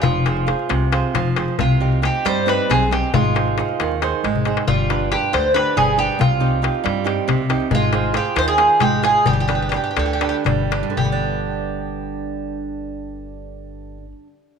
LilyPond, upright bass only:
\new Staff \with { instrumentName = "Upright bass" } { \clef bass \time 7/8 \tempo 4 = 135 f,,4. c,4 f,,4 | c,4. g,4 b,,4 | aes,,4. ees,4 aes,,4 | g,,4. d,4 g,,4 |
c,4. g,4 c,4 | aes,,4. ees,4 aes,,4 | g,,4. d,4 g,,4 | g,,2.~ g,,8~ |
g,,2.~ g,,8 | }